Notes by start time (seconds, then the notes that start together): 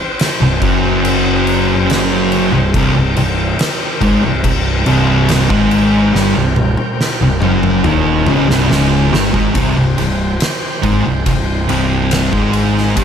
Already playing: C4 C5 G5
0.19 snare, crash
0.40 C1 C2
0.62 F#1 F#2 F#3, kick, crash
1.05 crash
1.47 crash
1.90 snare, crash
2.32 crash
2.52 C1 C2
2.74 C1 C2 C3 A#4, kick, crash
2.96 C1 C2
3.16 C1 C2, crash
3.59 snare, crash
4.01 G#1 G#2 G#3, kick, crash
4.24 C1 C2
4.44 C1 C2, kick, crash
4.86 C1 C2 C3, crash
5.29 snare, crash
5.49 G#1 G#2 G#3, kick
5.71 crash
6.14 G1 G2 G3, snare
6.36 C1 C2
6.56 high tom
6.77 high tom
7.01 snare
7.21 C1 C2
7.42 F#1 F#2 F#3, mid tom
7.63 mid tom
7.84 D#1 D#2 D#3, mid tom
8.26 C#1 C#2 C#3, mid tom
8.49 C1 C2 C3, snare
8.70 C#1 C#2 C#3, snare
9.13 G1 G2 G3, snare
9.34 G#1 G#2 G#3, kick
9.55 C1 C2 C3 C4 C5 G5, kick, ride
9.76 C1 C2
9.98 C1 C2, ride
10.40 snare, ride
10.83 G#1 G#2 G#3, kick, ride
11.05 C1 C2
11.26 C1 C2, kick, ride
11.69 C1 C2 C3, ride
12.11 snare, ride
12.32 G#1 G#2 G#3, kick
12.54 ride
12.78 snare
12.97 G1 G2 G3, kick, ride